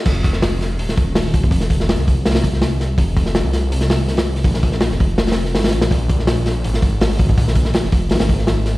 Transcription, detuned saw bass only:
X:1
M:4/4
L:1/16
Q:1/4=164
K:Fm
V:1 name="Detuned saw bass" clef=bass
F,,,8 E,,,8 | F,,,4- F,,, C,,8- C,,3 | F,,,4- F,,, C,,8- C,,3 | B,,,4- B,,, F,,,6- F,,, A,,,2 B,,,2 |
B,,,8 A,,,8 | B,,,4- B,,, F,,,3 A,,,8 |]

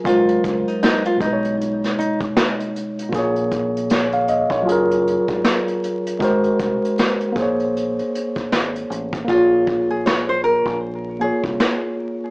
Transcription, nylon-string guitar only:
X:1
M:4/4
L:1/16
Q:"Swing 16ths" 1/4=78
K:Bbm
V:1 name="Nylon-string guitar"
F3 E E F ^D2 z2 D z4 z | z16 | z16 | F3 A d c B2 z2 A z4 z |]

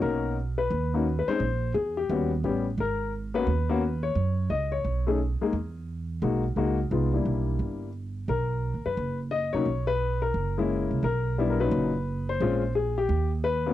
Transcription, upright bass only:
X:1
M:4/4
L:1/8
Q:"Swing" 1/4=174
K:B
V:1 name="Upright bass" clef=bass
B,,,4 D,,3 z | A,,,2 E,,2 D,,2 =A,,,2 | G,,,4 D,,4 | F,,2 C,,2 B,,,3 z |
E,,4 B,,,2 C,,2 | =C,,2 B,,,2 =G,,,4 | B,,,2- (3B,,, D,, F,, F,,,3 =C,, | B,,,4 F,,,3 =C,, |
B,,,4 F,,,4 | A,,,4 D,,4 |]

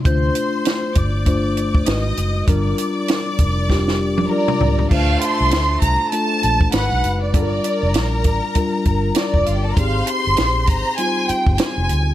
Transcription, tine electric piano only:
X:1
M:4/4
L:1/8
Q:"Swing 16ths" 1/4=99
K:Gm
V:1 name="Tine electric piano"
[A,DFc]3 z [A,DFc] z [_A,E_G_c] z | [G,DFB]3 z [G,DFG] z [G,DFB] z | [A,DFc]3 z [A,DFA]2 [_A,E_GB_c]2 | [G,DFAB]3 z [G,DFB]3 z |
[CEG_A]3 z [G,CEF]3 z |]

